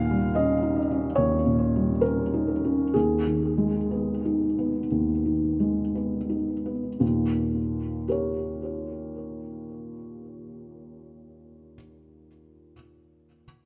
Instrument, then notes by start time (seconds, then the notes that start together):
felt piano
Already playing: D#2 A#2 F5
0.11 G3
0.35 C#4 D#5
0.62 D#4
0.91 C#4
1.15 D#2 C#5
1.46 A#2
1.76 G3
2.01 C#4 A#4
2.34 D#4
2.65 C#4
2.94 D#2 G#4
3.27 D#3
3.58 G#3
3.91 B3
4.25 D#4
4.59 B3
4.91 D#2
5.25 D#3
5.60 G#3
5.95 B3
6.30 D#4
6.66 B3
7.00 D#2 A#2
8.08 G4 A#4 C#5